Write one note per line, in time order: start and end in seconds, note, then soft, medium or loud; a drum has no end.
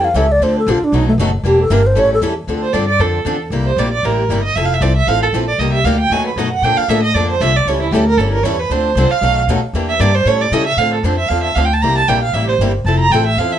0.00 0.13 F2 medium
0.05 0.18 F5 medium
0.14 0.39 C#2 medium
0.14 0.25 E3 medium
0.14 0.25 G3 medium
0.14 0.25 C#4 loud
0.14 0.25 E4 loud
0.14 0.25 A4 medium
0.14 0.33 E5 loud
0.32 0.45 D5 loud
0.40 0.65 D2 medium
0.40 0.59 D3 medium
0.40 0.59 F3 medium
0.40 0.60 C4 medium
0.40 0.60 D4 medium
0.40 0.60 A4 medium
0.40 0.57 C5 loud
0.59 0.72 A4 medium
0.67 0.80 A#1 loud
0.67 0.77 D3 loud
0.67 0.77 F3 medium
0.67 0.78 C4 medium
0.67 0.78 D4 loud
0.67 0.78 A4 medium
0.71 0.86 F4 medium
0.81 0.97 D4 loud
0.81 muted upright bass stroke soft
0.92 1.17 B1 medium
0.92 1.11 B2 medium
0.92 1.11 D#3 medium
0.92 1.11 F#3 medium
0.92 1.11 A3 medium
0.92 1.11 B3 medium
0.92 1.11 D#4 medium
0.92 1.08 D#4 loud
0.92 1.11 F#4 medium
0.92 1.11 A4 medium
1.08 1.15 A3 medium
1.18 1.43 F#1 medium
1.18 1.29 B2 medium
1.18 1.29 D#3 medium
1.18 1.29 F#3 medium
1.18 1.29 A3 medium
1.18 1.29 B3 medium
1.18 1.29 D#4 loud
1.18 1.30 F#4 loud
1.18 1.30 A4 loud
1.43 1.69 E1 loud
1.43 1.63 E3 medium
1.43 1.63 G3 medium
1.43 1.62 A#3 medium
1.43 1.63 D4 medium
1.43 1.63 E4 medium
1.43 1.63 G4 medium
1.43 1.59 G4 medium
1.43 1.63 A#4 medium
1.61 1.74 A4 loud
1.70 1.95 G1 loud
1.70 1.80 E3 loud
1.70 1.81 G3 loud
1.70 1.81 A#3 loud
1.70 1.81 D4 loud
1.70 1.81 E4 loud
1.70 1.81 G4 loud
1.70 1.81 A#4 loud
1.70 1.88 A#4 loud
1.87 2.01 C5 loud
1.96 2.21 A1 medium
1.96 2.14 E3 medium
1.96 2.15 G3 medium
1.96 2.15 C#4 medium
1.96 2.15 E4 medium
1.96 2.15 A4 medium
1.96 2.13 C#5 loud
2.14 2.20 A4 loud
2.21 2.47 E2 medium
2.21 2.32 E3 loud
2.21 2.33 G3 medium
2.21 2.33 C#4 loud
2.21 2.33 E4 loud
2.21 2.33 A4 loud
2.47 2.72 D2 medium
2.47 2.66 D3 medium
2.47 2.67 F3 medium
2.47 2.67 C4 medium
2.47 2.67 D4 medium
2.47 2.67 A4 medium
2.62 2.74 C5 medium
2.73 2.98 G2 medium
2.73 2.84 D3 medium
2.73 2.84 F3 medium
2.73 2.84 C4 medium
2.73 2.85 D4 medium
2.73 2.85 A4 medium
2.73 2.87 D5 medium
2.88 3.02 D5 loud
2.99 3.24 F2 medium
2.99 3.18 D3 medium
2.99 3.18 F3 medium
2.99 3.18 C4 medium
2.99 3.19 D4 medium
2.99 3.41 A4 medium
2.99 3.18 A4 medium
3.25 3.50 E2 medium
3.25 3.36 D3 medium
3.25 3.36 F3 medium
3.25 3.36 C4 medium
3.25 3.37 D4 medium
3.25 3.37 A4 loud
3.50 3.76 C2 medium
3.50 3.70 C3 medium
3.50 3.70 G3 medium
3.50 3.70 A#3 medium
3.50 3.71 E4 medium
3.50 3.71 G4 medium
3.66 3.80 C5 medium
3.76 4.02 A#1 loud
3.76 3.88 C3 medium
3.76 3.88 G3 medium
3.76 3.88 A#3 medium
3.76 3.89 E4 medium
3.76 3.89 G4 loud
3.76 3.92 D5 medium
3.92 4.06 D5 medium
4.03 4.28 A1 medium
4.03 4.22 C3 medium
4.03 4.22 G3 medium
4.03 4.23 A#3 medium
4.03 4.23 E4 medium
4.03 4.23 G4 medium
4.03 4.43 A#4 medium
4.29 4.54 G1 medium
4.29 4.40 C3 medium
4.29 4.41 G3 medium
4.29 4.41 A#3 medium
4.29 4.41 E4 loud
4.29 4.41 G4 medium
4.44 4.57 D#5 loud
4.56 4.80 F1 medium
4.56 4.74 F3 medium
4.56 4.74 A3 medium
4.56 4.75 C4 medium
4.56 4.75 E4 medium
4.56 4.75 A4 medium
4.56 4.66 E5 medium
4.65 4.75 F5 medium
4.74 4.84 E5 medium
4.81 5.06 C2 loud
4.81 4.92 F3 medium
4.81 4.92 A3 loud
4.81 4.92 C4 medium
4.81 4.92 E4 medium
4.81 4.93 A4 loud
4.81 4.96 D5 medium
4.96 5.09 E5 loud
5.07 5.32 A1 medium
5.07 5.26 F3 medium
5.07 5.26 A3 medium
5.07 5.26 C4 medium
5.07 5.26 E4 medium
5.07 5.26 A4 medium
5.07 5.22 F5 loud
5.22 5.29 A4 medium
5.33 5.58 A#1 medium
5.33 5.44 F3 medium
5.33 5.44 A3 medium
5.33 5.44 C4 loud
5.33 5.45 E4 loud
5.33 5.45 A4 medium
5.48 5.61 D5 medium
5.58 5.83 C2 medium
5.58 5.78 C3 medium
5.58 5.78 G3 medium
5.58 5.79 A#3 medium
5.58 5.79 D#4 medium
5.58 5.79 G4 medium
5.58 5.72 D#5 medium
5.73 5.86 E5 medium
5.84 6.09 D2 loud
5.84 5.96 C3 medium
5.84 5.96 G3 medium
5.84 5.96 A#3 medium
5.84 5.96 D#4 medium
5.84 5.97 G4 medium
5.84 6.00 F5 medium
6.00 6.14 G5 loud
6.10 6.35 D#2 medium
6.10 6.30 B2 medium
6.10 6.30 F#3 medium
6.10 6.30 A3 medium
6.10 6.30 D#4 medium
6.10 6.30 F#4 medium
6.10 6.30 B4 medium
6.10 6.26 G#5 medium
6.27 6.39 B4 medium
6.36 6.61 F#2 medium
6.36 6.48 B2 medium
6.36 6.48 F#3 medium
6.36 6.48 A3 medium
6.36 6.49 D#4 medium
6.36 6.49 F#4 medium
6.36 6.49 B4 loud
6.36 6.51 D#5 medium
6.52 6.65 F#5 medium
6.62 6.76 A#2 medium
6.62 6.82 D3 medium
6.62 6.82 F3 medium
6.62 6.82 A#3 medium
6.62 6.82 D4 medium
6.62 6.83 A4 medium
6.62 6.79 G5 loud
6.77 6.90 F5 loud
6.77 muted upright bass stroke soft
6.88 7.14 A2 loud
6.88 7.00 D3 medium
6.88 7.00 F3 medium
6.88 7.00 A#3 medium
6.88 7.00 D4 medium
6.88 7.01 A4 medium
6.88 7.02 E5 medium
7.03 7.16 D#5 medium
7.14 7.40 F2 medium
7.14 7.34 D3 medium
7.14 7.34 F3 medium
7.14 7.34 A#3 medium
7.14 7.34 D4 medium
7.14 7.34 A4 medium
7.14 7.29 D5 medium
7.30 7.43 C5 medium
7.40 7.65 C2 medium
7.40 7.52 D3 medium
7.40 7.52 F3 medium
7.40 7.52 A#3 medium
7.40 7.52 D4 loud
7.40 7.52 A4 loud
7.40 7.57 E5 loud
7.56 7.69 D5 medium
7.65 7.91 C#2 medium
7.65 7.86 E3 medium
7.65 7.86 G3 medium
7.65 7.86 C#4 medium
7.65 7.86 E4 medium
7.65 7.86 A4 medium
7.65 7.81 C#5 medium
7.82 7.94 E4 medium
7.91 8.17 D2 loud
7.91 8.04 E3 medium
7.91 8.04 G3 medium
7.91 8.04 C#4 medium
7.91 8.04 E4 loud
7.91 8.05 G4 medium
7.96 8.05 A4 loud
8.06 8.19 A#4 loud
8.17 8.42 G1 medium
8.17 8.37 E3 medium
8.17 8.38 G3 medium
8.17 8.38 C#4 medium
8.17 8.38 E4 medium
8.17 8.32 A4 medium
8.17 8.38 A4 medium
8.32 8.45 A#4 loud
8.43 8.69 E2 medium
8.43 8.55 E3 medium
8.43 8.55 G3 loud
8.43 8.55 C#4 medium
8.43 8.56 E4 loud
8.43 8.56 A4 loud
8.43 8.61 C#5 medium
8.60 8.73 B4 medium
8.70 8.95 D2 medium
8.70 8.89 D3 medium
8.70 8.89 F3 medium
8.70 8.89 C4 medium
8.70 8.89 D4 medium
8.70 8.89 A4 medium
8.70 9.12 C5 medium
8.95 9.10 C2 loud
8.95 9.07 D3 loud
8.95 9.07 F3 loud
8.95 9.08 C4 loud
8.95 9.08 D4 medium
8.95 9.08 A4 loud
9.10 9.37 F5 loud
9.10 muted upright bass stroke soft
9.21 9.47 B1 medium
9.21 9.41 B2 medium
9.21 9.41 D#3 medium
9.21 9.41 F#3 medium
9.21 9.41 A3 medium
9.21 9.41 B3 medium
9.21 9.41 D#4 medium
9.21 9.41 F#4 medium
9.21 9.42 A4 medium
9.47 9.61 D#2 medium
9.47 9.59 B2 loud
9.47 9.59 D#3 loud
9.47 9.59 F#3 medium
9.47 9.60 A3 medium
9.47 9.59 B3 loud
9.47 9.59 D#4 loud
9.47 9.60 F#4 loud
9.47 9.59 A4 loud
9.62 muted upright bass stroke soft
9.73 9.99 E2 medium
9.73 9.93 E3 medium
9.73 9.93 G3 medium
9.73 9.93 A#3 medium
9.73 9.93 D4 medium
9.73 9.93 E4 medium
9.73 9.94 G4 medium
9.73 9.93 A#4 medium
9.89 10.02 E5 medium
10.00 10.25 G2 loud
10.00 10.11 E3 medium
10.00 10.11 G3 medium
10.00 10.10 A#3 loud
10.00 10.11 D4 medium
10.00 10.11 E4 loud
10.00 10.11 G4 loud
10.00 10.11 A#4 loud
10.00 10.17 D5 medium
10.15 10.29 C5 loud
10.25 10.51 A2 medium
10.25 10.45 E3 medium
10.25 10.45 G3 medium
10.25 10.45 C#4 medium
10.25 10.45 E4 medium
10.25 10.46 A4 medium
10.25 10.43 C#5 loud
10.41 10.54 D5 loud
10.51 10.76 C#3 medium
10.51 10.63 E3 loud
10.51 10.63 G3 loud
10.51 10.63 C#4 loud
10.51 10.64 E4 loud
10.51 10.64 A4 loud
10.51 10.66 D#5 loud
10.66 10.79 E5 loud
10.77 11.03 A2 medium
10.77 10.97 D3 medium
10.77 10.97 F3 medium
10.77 10.97 C4 medium
10.77 10.97 D4 medium
10.77 10.97 A4 medium
10.77 10.93 F5 medium
10.94 11.06 A4 soft
11.03 11.29 F2 medium
11.03 11.15 D3 medium
11.03 11.15 F3 medium
11.03 11.15 C4 medium
11.03 11.15 D4 medium
11.03 11.16 A4 medium
11.03 11.18 C5 medium
11.18 11.30 E5 loud
11.29 11.55 E2 medium
11.29 11.49 D3 medium
11.29 11.49 F3 medium
11.29 11.49 C4 medium
11.29 11.49 D4 medium
11.29 11.49 A4 medium
11.29 11.43 F5 medium
11.43 11.57 E5 medium
11.55 11.81 D2 medium
11.55 11.67 D3 medium
11.55 11.67 F3 medium
11.55 11.67 C4 medium
11.55 11.67 D4 medium
11.55 11.67 A4 medium
11.55 11.66 F5 medium
11.65 11.75 G5 medium
11.73 11.84 A5 medium
11.82 12.08 C2 medium
11.82 12.01 C3 medium
11.82 12.01 G3 medium
11.82 12.01 A#3 medium
11.82 12.01 E4 medium
11.82 12.01 G4 medium
11.82 11.97 A#5 loud
11.98 12.10 A5 loud
12.08 12.33 A#1 loud
12.08 12.18 C3 medium
12.08 12.19 G3 medium
12.08 12.19 A#3 medium
12.08 12.19 E4 medium
12.08 12.19 G4 medium
12.08 12.22 G5 medium
12.23 12.35 F5 medium
12.33 12.58 A1 medium
12.33 12.52 C3 medium
12.33 12.53 G3 medium
12.33 12.53 A#3 medium
12.33 12.53 E4 medium
12.33 12.53 G4 medium
12.33 12.48 E5 medium
12.48 12.55 C5 medium
12.59 12.84 G1 medium
12.59 12.71 C3 medium
12.59 12.71 G3 loud
12.59 12.71 A#3 medium
12.59 12.71 E4 loud
12.59 12.72 G4 loud
12.84 13.10 F1 medium
12.84 13.05 F3 medium
12.84 13.05 A3 medium
12.84 13.05 C4 medium
12.84 13.05 E4 medium
12.84 13.05 A4 medium
12.84 12.99 A5 medium
12.99 13.13 A#5 loud
13.10 13.36 A1 loud
13.10 13.23 F3 medium
13.10 13.23 A3 medium
13.10 13.23 C4 loud
13.10 13.23 E4 medium
13.10 13.23 A4 medium
13.10 13.26 G5 loud
13.26 13.40 E5 loud
13.37 13.59 E2 medium
13.37 13.56 F3 medium
13.37 13.57 A3 medium
13.37 13.57 C4 medium
13.37 13.57 E4 medium
13.37 13.57 A4 medium
13.37 13.54 F5 medium
13.52 13.59 E5 medium